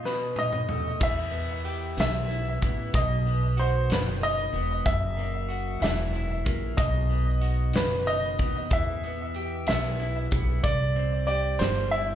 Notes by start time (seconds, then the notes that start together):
Already playing: D#4 F4 D#5
0.03 B2 B4, snare
0.36 D#4 D#5, high tom
0.52 mid tom
0.69 A3, mid tom
1.00 E2 E3 E5, kick, crash
1.32 B3, closed hi-hat
1.65 G4, closed hi-hat
1.97 B1 B3 E5, snare, closed hi-hat
2.29 E4, closed hi-hat
2.62 A1 B3, kick, closed hi-hat
2.93 B1 B2 D#5, kick, closed hi-hat
3.26 B3, closed hi-hat
3.57 F#4 C5, closed hi-hat
3.89 F#1 D#3 B4, snare, closed hi-hat
4.21 D#4 D#5, closed hi-hat
4.53 E1 B3, closed hi-hat
4.85 F#1 F#2 E5, kick, closed hi-hat
5.17 A#3, closed hi-hat
5.48 F#4, closed hi-hat
5.80 E1 E3 E5, closed hi-hat
5.84 snare
6.13 E4, closed hi-hat
6.45 A#1 A#3, kick, closed hi-hat
6.77 B1 B2 D#5, kick, closed hi-hat
7.09 B3, closed hi-hat
7.41 F#4, closed hi-hat
7.73 F#1 D#3 B4, snare, closed hi-hat
8.06 D#4 D#5, closed hi-hat
8.39 D#2 B3, kick, closed hi-hat
8.71 E2 E3 E5, kick, closed hi-hat
9.04 B3, closed hi-hat
9.35 G4, closed hi-hat
9.67 B1 B3 E5, snare, closed hi-hat
10.00 E4, closed hi-hat
10.31 B1 B3, kick, closed hi-hat
10.63 C2 D5, kick, closed hi-hat
10.96 C4, closed hi-hat
11.27 G4 D5, closed hi-hat
11.59 G1 G3 C5, snare, closed hi-hat
11.91 E4 E5, closed hi-hat